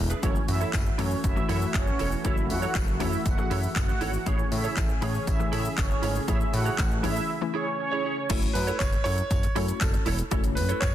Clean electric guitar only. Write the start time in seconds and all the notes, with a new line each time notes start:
0.10 D4 G#4 B4
0.22 E4 A4 C#5
0.35 muted clean electric guitar stroke
0.48 muted clean electric guitar stroke
0.60 E4 A4 C#5
0.86 muted clean electric guitar stroke
0.98 E4 A4 C#5
1.11 muted clean electric guitar stroke
1.24 muted clean electric guitar stroke
1.36 muted clean electric guitar stroke
1.49 E4 A4 C#5
1.61 muted clean electric guitar stroke
1.87 muted clean electric guitar stroke
1.99 E4 A4 C#5
2.12 muted clean electric guitar stroke
2.24 E4 A4 C#5
2.37 muted clean electric guitar stroke
2.50 muted clean electric guitar stroke
2.62 E4 A4 C#5
2.88 muted clean electric guitar stroke
3.00 E4 A4 C#5
3.13 muted clean electric guitar stroke
3.25 muted clean electric guitar stroke
3.38 muted clean electric guitar stroke
3.50 E4 A4 C#5
3.63 muted clean electric guitar stroke
3.88 muted clean electric guitar stroke
4.01 E4 A4 C#5
4.14 muted clean electric guitar stroke
4.26 E4 G#4 C#5
4.39 muted clean electric guitar stroke
4.51 muted clean electric guitar stroke
4.64 E4 G#4 C#5
4.89 muted clean electric guitar stroke
5.01 E4 G#4 C#5
5.14 muted clean electric guitar stroke
5.27 muted clean electric guitar stroke
5.39 muted clean electric guitar stroke
5.52 E4 G#4 C#5
5.65 muted clean electric guitar stroke
5.90 muted clean electric guitar stroke
6.02 E4 G#4 C#5
6.15 muted clean electric guitar stroke
6.28 E4 G#4 C#5
6.40 muted clean electric guitar stroke
6.53 muted clean electric guitar stroke
6.65 E4 G#4 C#5
6.91 muted clean electric guitar stroke
7.03 E4 G#4 C#5
7.16 muted clean electric guitar stroke
7.29 muted clean electric guitar stroke
7.41 muted clean electric guitar stroke
7.54 E4 G#4 C#5
7.67 muted clean electric guitar stroke
7.79 muted clean electric guitar stroke
7.92 E4 G#4 C#5
8.04 E4 G#4 C#5
8.17 muted clean electric guitar stroke
8.29 E4 A4 C#5
8.42 muted clean electric guitar stroke
8.55 muted clean electric guitar stroke
8.67 E4 A4 C#5
8.93 muted clean electric guitar stroke
9.05 E4 A4 C#5
9.18 muted clean electric guitar stroke
9.30 muted clean electric guitar stroke
9.43 muted clean electric guitar stroke
9.55 E4 A4 C#5
9.68 muted clean electric guitar stroke
9.93 muted clean electric guitar stroke
10.06 E4 A4 C#5
10.19 muted clean electric guitar stroke
10.31 E4 A4 C#5
10.44 muted clean electric guitar stroke
10.56 muted clean electric guitar stroke
10.69 E4 A4 C#5